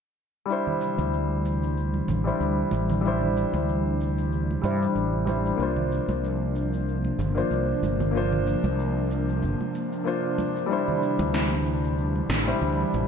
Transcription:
0.46 E3 G3 D4
0.50 C3 D4 E4 C5, shaker
0.67 low conga
0.81 shaker
0.98 D2, high conga, shaker
1.14 shaker
1.45 shaker
1.63 shaker
1.77 shaker
1.94 high conga
2.08 A1, low conga, shaker
2.24 G3 D4 E4 C5, shaker
2.40 D2, shaker
2.71 A1, high conga, shaker
2.90 low conga, shaker
3.01 G3 D4
3.05 E4 C5, shaker
3.21 low conga
3.37 shaker
3.54 D2, high conga, shaker
3.69 shaker
4.01 shaker
4.18 shaker
4.33 shaker
4.51 high conga
4.62 G2 G3 D4 E4 C5, shaker
4.82 shaker
4.95 A1, shaker
5.25 G3 D4 E4 C5, high conga, shaker
5.46 shaker
5.56 C2 F3 A#3 D4
5.60 F4 C5, shaker
5.77 low conga
5.92 shaker
6.08 C2, high conga, shaker
6.24 shaker
6.56 shaker
6.73 shaker
6.88 shaker
7.05 high conga
7.19 G1, low conga, shaker
7.34 A#3 D4 F4 C5, shaker
7.51 C2, shaker
7.83 G1, high conga, shaker
8.00 low conga, shaker
8.11 A#3 D4
8.15 F4 C5, shaker
8.32 low conga
8.47 shaker
8.64 C2, high conga, shaker
8.79 shaker
9.11 shaker
9.29 shaker
9.42 G1, shaker
9.61 high conga
9.75 shaker
9.92 shaker
10.04 A#3 D4 F4 C5, shaker
10.38 high conga, shaker
10.57 shaker
10.66 G3 D4
10.70 E3 G3 E4 C5, shaker
10.88 low conga
11.03 shaker
11.19 D2, high conga, shaker
11.34 snare, shaker
11.66 shaker
11.84 shaker
11.98 shaker
12.16 high conga
12.29 A1, snare, low conga, shaker
12.45 G3 D4 E4 C5, shaker
12.61 D2, shaker
12.94 A1, high conga, shaker

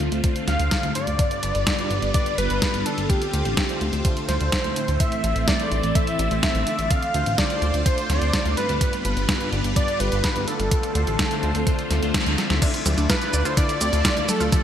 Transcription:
Already playing: D3 A3 C4 D4 F4 C5
0.00 D2, closed hi-hat
0.12 D2, closed hi-hat
0.24 D3 A3 D4 F4 C5, kick, closed hi-hat
0.36 closed hi-hat
0.48 D2 F5, snare, closed hi-hat
0.59 D2 D3 A3 D4 F4 C5, closed hi-hat
0.71 kick, snare, closed hi-hat
0.83 D2, closed hi-hat
0.95 G2 G3 D4 F4 D5, closed hi-hat
1.07 D2, closed hi-hat
1.19 G3 B3 F4, kick, closed hi-hat
1.31 closed hi-hat
1.43 G1 G2 G3 D4 F4 B4, closed hi-hat
1.55 G1, closed hi-hat
1.67 kick, snare, closed hi-hat
1.79 G2 G3 D4 F4 B4, closed hi-hat
1.91 G1, closed hi-hat
2.02 G1, closed hi-hat
2.14 G2 G3 D4 F4 B4 D5, kick, closed hi-hat
2.26 closed hi-hat
2.38 G1 B4, closed hi-hat
2.50 G1 G2 G3 D4 F4 B4, closed hi-hat
2.62 kick, snare, closed hi-hat
2.74 G1, closed hi-hat
2.86 D3 A3 D4 F4 A4 D5, closed hi-hat
2.98 G1, closed hi-hat
3.10 A3 C4 G4, kick, closed hi-hat
3.22 closed hi-hat
3.33 D2 D3 A3 D4 F4 C5, closed hi-hat
3.45 A1, closed hi-hat
3.57 kick, snare, closed hi-hat
3.69 D3 A3 D4 F4 C5, closed hi-hat
3.81 D2, closed hi-hat
3.93 D2, closed hi-hat
4.05 D3 A3 D4 F4 C5, kick, closed hi-hat
4.17 closed hi-hat
4.28 D2 C5, snare, closed hi-hat
4.40 D2 D3 A3 D4 F4 C5, closed hi-hat
4.52 kick, snare, closed hi-hat
4.64 D2, closed hi-hat
4.76 A2 A3 C4 E4 C5, closed hi-hat
4.88 D2, closed hi-hat
5.00 E3 A4 E5, kick, closed hi-hat
5.12 closed hi-hat
5.24 A1 A2 A3 C4 E4 C5, closed hi-hat
5.36 A1, closed hi-hat
5.48 D5, kick, snare, closed hi-hat
5.60 A2 A3 C4 E4 C5, closed hi-hat
5.72 A1, closed hi-hat
5.83 A1, closed hi-hat
5.95 A2 A3 C4 E4 C5 E5, kick, closed hi-hat
6.07 closed hi-hat
6.19 A1, closed hi-hat
6.31 A1 A2 A3 C4 E4 C5, closed hi-hat
6.43 E5, kick, snare, closed hi-hat
6.55 A1, closed hi-hat
6.67 D3 A3 D4 F4 D5, closed hi-hat
6.79 A1, closed hi-hat
6.91 D3 F4 F5, kick, closed hi-hat
7.02 closed hi-hat
7.14 D2 D3 A3 D4 F4 C5, closed hi-hat
7.26 A1, closed hi-hat
7.38 D5, kick, snare, closed hi-hat
7.50 D3 A3 D4 F4 C5, closed hi-hat
7.62 D2, closed hi-hat
7.74 D2, closed hi-hat
7.86 D3 A3 D4 F4 C5, kick, closed hi-hat
7.98 closed hi-hat
8.10 D2 D5, snare, closed hi-hat
8.22 D2 D3 A3 D4 F4 C5, closed hi-hat
8.33 kick, snare, closed hi-hat
8.45 D2, closed hi-hat
8.57 G2 G3 D4 F4 B4 D5, closed hi-hat
8.69 D2, closed hi-hat
8.81 G3 B3 F4, kick, closed hi-hat
8.93 closed hi-hat
9.05 G1 G2 G3 D4 F4 B4, closed hi-hat
9.17 G1, closed hi-hat
9.29 kick, snare, closed hi-hat
9.41 G2 G3 D4 F4 B4, closed hi-hat
9.53 G1, closed hi-hat
9.64 G1, closed hi-hat
9.76 G2 G3 D4 F4 B4 D5, kick, closed hi-hat
9.88 closed hi-hat
10.00 G1 B4, closed hi-hat
10.12 G1 G2 G3 D4 F4 B4, closed hi-hat
10.24 kick, snare, closed hi-hat
10.36 G1, closed hi-hat
10.47 D3 A3 D4 F4 A4 D5, closed hi-hat
10.60 G1, closed hi-hat
10.71 A3 C4 F4, kick, closed hi-hat
10.83 closed hi-hat
10.95 D2 D3 A3 D4 F4 C5, closed hi-hat
11.07 A1, closed hi-hat
11.19 kick, snare, closed hi-hat
11.31 D3 A3 D4 F4 C5, closed hi-hat
11.43 D2, closed hi-hat
11.55 D2, closed hi-hat
11.67 D3 A3 D4 F4 C5, kick, closed hi-hat
11.79 closed hi-hat
11.91 D2, snare, closed hi-hat
12.02 D2 D3 A3 D4 F4 C5, closed hi-hat
12.14 kick, snare, closed hi-hat
12.26 D2, closed hi-hat
12.38 D3 A3 E4 F4 E5, snare, closed hi-hat
12.50 D2, snare, closed hi-hat
12.62 A3 D4, kick, closed hi-hat, crash, cabasa
12.74 closed hi-hat, cabasa
12.86 D2 D3 A3 C4 E4 F4 D5, closed hi-hat, high tom, cabasa
12.98 D2 D4, closed hi-hat, cabasa
13.10 F4 B4, kick, snare, closed hi-hat, cabasa
13.21 D3 A3 E4 F4 D5, closed hi-hat, cabasa
13.33 D2 D5, closed hi-hat, cabasa
13.45 D2 F4 C5, closed hi-hat, cabasa
13.57 D3 A3 D4 E4 F4 D5, kick, closed hi-hat, cabasa
13.69 closed hi-hat, cabasa
13.81 D2 C4, closed hi-hat, cabasa
13.93 D2 D3 A3 D4 E4 F4 D5, closed hi-hat, cabasa
14.05 F4, kick, snare, closed hi-hat, cabasa
14.17 D2, closed hi-hat, cabasa
14.28 A3 F4 G4 A4 D5, closed hi-hat, high tom, cabasa
14.40 D2 F4, closed hi-hat, cabasa
14.52 F3 C4 G4, kick, closed hi-hat, cabasa

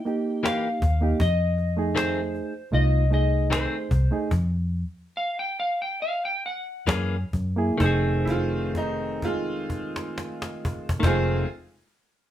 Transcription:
Already playing: G5
0.05 A#3 D#4 G4, cajon slap
0.43 E3 A#3 D#4 G4 F5, cajon slap
0.82 D#2, cajon bass
1.01 A#3 D#4 G4
1.20 F2 D#5, cajon bass
1.58 cajon slap
1.77 A3 D#4 G#4
1.95 D#3 A3 C4 G#4 C5, cajon slap
2.35 cajon slap
2.72 C2 A3 D#4 F4 D#5, cajon slap
3.11 A3 D#4 G#4 D#5, cajon slap
3.50 D#3 A3 C4 G#4 C5, cajon slap
3.91 C2, cajon bass
4.11 A3 D#4 G#4
4.31 F2, cajon bass
5.17 F5
5.39 G5
5.60 F5
5.82 G5
6.02 F5
6.25 G5
6.46 F#5
6.87 F#2 E3 A#3 C#4 G#4, cajon bass, cajon slap
7.33 F#2, cajon bass
7.56 A#3 E4 G#4
7.77 F1 D#3 A3 D#4, cajon bass
7.81 A3 C4 G#4 C5
7.86 G#4
8.25 E4, cajon bass
8.30 F4
8.75 D#4, cajon bass
9.22 G#3 F4, cajon bass
9.70 cajon bass
9.96 cajon slap
10.18 cajon slap
10.42 cajon slap
10.65 cajon bass
10.89 cajon bass
10.99 F1 D#3 A3, cajon bass
11.03 G#3 C4 D#4 F4 G#4 C5, cajon slap
11.08 G#4

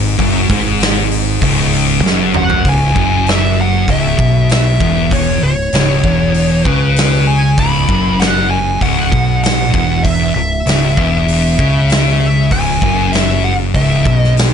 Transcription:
Already playing: G#1 G#2
0.18 F#1 F#2, kick, open hi-hat
0.49 G#1 G#2, kick, open hi-hat
0.80 snare, open hi-hat
1.11 open hi-hat
1.41 C#1 C#2, kick, open hi-hat
1.73 open hi-hat
2.03 F#1 F#2, snare
2.34 F#5, mid tom
2.50 floor tom
2.64 C#1 C#2, kick, open hi-hat
2.69 G#5
2.94 F#1 F#2, kick
3.26 E5, snare, open hi-hat
3.61 F#5
3.88 C#1 C#2 E5, kick, open hi-hat
4.18 B1 B2, kick
4.49 E5, snare, open hi-hat
4.80 E1 E2, kick
5.11 C#5, kick, open hi-hat
5.42 C#1 C#2 C#5
5.72 C#1 C#2, snare, open hi-hat
6.04 E1 E2, kick
6.34 open hi-hat
6.65 C#2 C#3 B4, kick
6.96 snare, open hi-hat
7.27 G#5
7.58 C#1 C#2 B5, kick, open hi-hat
7.89 F#1 F#2, kick
8.19 F#5, snare, open hi-hat
8.50 G#5
8.81 C#1 C#2 F#5, kick, open hi-hat
9.12 B1 B2, kick
9.43 F#5, snare, open hi-hat
9.74 E1 E2, kick
10.03 E5, kick, open hi-hat
10.34 C#1 C#2 E5
10.66 C#1 C#2, snare, open hi-hat
10.97 E1 E2, kick
11.28 open hi-hat
11.59 C#2 C#3, kick
11.90 snare, open hi-hat
12.20 E5
12.51 C#1 C#2 G#5, kick, open hi-hat
12.82 F#1 F#2, kick
13.13 E5, snare, open hi-hat
13.44 F#5
13.75 C#1 C#2 E5, kick, open hi-hat
14.05 B1 B2, kick
14.16 D#5
14.24 snare
14.37 snare, open hi-hat

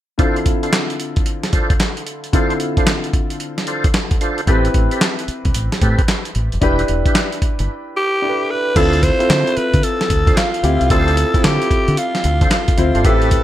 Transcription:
0.18 D3 C4 D4 E4 F4 A4 C5, kick, closed hi-hat
0.36 closed hi-hat
0.46 kick, closed hi-hat
0.63 D4 F4 A4 C5, closed hi-hat
0.73 snare, clap, closed hi-hat
0.90 closed hi-hat
1.00 closed hi-hat
1.16 kick, closed hi-hat
1.26 closed hi-hat
1.43 snare, closed hi-hat
1.53 D4 F4 A4 C5, kick, closed hi-hat
1.70 kick, closed hi-hat
1.80 snare, clap, closed hi-hat
1.97 closed hi-hat
2.07 closed hi-hat
2.24 closed hi-hat
2.33 D3 C4 D4 E4 F4 A4 C5, kick, closed hi-hat
2.50 closed hi-hat
2.60 closed hi-hat
2.77 D4 F4 A4 C5, kick, closed hi-hat
2.87 snare, clap, closed hi-hat
3.04 closed hi-hat
3.13 kick, closed hi-hat
3.30 closed hi-hat
3.40 closed hi-hat
3.58 snare, closed hi-hat
3.67 D4 F4 A4 C5, closed hi-hat
3.84 kick, closed hi-hat
3.94 snare, clap, closed hi-hat
4.11 kick, closed hi-hat
4.21 D4 F4 A4 C5, closed hi-hat
4.38 closed hi-hat
4.47 A1 C4 E4 G4 A4 B4, kick, closed hi-hat
4.65 closed hi-hat
4.74 A1, kick, closed hi-hat
4.91 C4 G4 A4 B4, closed hi-hat
5.01 snare, clap, closed hi-hat
5.19 closed hi-hat
5.28 muted fingered electric bass stroke, closed hi-hat
5.45 C2, kick, closed hi-hat
5.54 A1, closed hi-hat
5.72 snare, closed hi-hat
5.81 A2 C4 G4 A4 B4, kick, closed hi-hat
5.99 kick, closed hi-hat
6.08 snare, clap, closed hi-hat
6.25 closed hi-hat
6.35 A1, closed hi-hat
6.52 F1, closed hi-hat
6.61 E1 D4 E4 G4 B4, kick, closed hi-hat
6.79 closed hi-hat
6.88 E1, closed hi-hat
7.06 D4 E4 G4 B4, kick, closed hi-hat
7.15 snare, clap, closed hi-hat
7.32 closed hi-hat
7.42 muted fingered electric bass stroke, kick, closed hi-hat
7.59 G1, closed hi-hat
7.97 G4
8.22 D4 E4 G4 A4
8.29 B4
8.51 B4
8.75 D2 C4 D4 E4 F4 A4 C5, kick, closed hi-hat, crash
8.93 closed hi-hat
9.03 C5, kick, closed hi-hat
9.19 C4 E4 F4 A4, closed hi-hat
9.30 D3, snare, clap, closed hi-hat
9.47 closed hi-hat
9.57 B4, muted fingered electric bass stroke, closed hi-hat
9.74 D3, kick, closed hi-hat
9.83 A4, closed hi-hat
10.01 snare, closed hi-hat
10.10 D2, kick, closed hi-hat
10.27 D4 F4 A4 C5, kick, closed hi-hat
10.37 F4, snare, clap, closed hi-hat
10.54 closed hi-hat
10.63 D2 C4 E4 F4 G4, closed hi-hat
10.81 C2, closed hi-hat
10.90 D2 C4 D4 E4 F4 A4 C5, kick, closed hi-hat
11.08 closed hi-hat
11.17 closed hi-hat
11.34 C4 E4 F4 A4, kick, closed hi-hat
11.44 D3 G4, snare, clap, closed hi-hat
11.62 closed hi-hat
11.71 muted fingered electric bass stroke, kick, closed hi-hat
11.88 D3, closed hi-hat
11.97 F4, closed hi-hat
12.15 snare, closed hi-hat
12.24 D2, closed hi-hat
12.41 D4 F4 A4 C5, kick, closed hi-hat
12.51 F4, snare, clap, closed hi-hat
12.68 kick, closed hi-hat
12.77 D2 C4 E4 F4 C5, closed hi-hat
12.95 G1 D4 F4 A4 C5, closed hi-hat
13.04 A1 C4 E4 G4 A4 B4, kick, closed hi-hat
13.22 closed hi-hat
13.31 kick, closed hi-hat

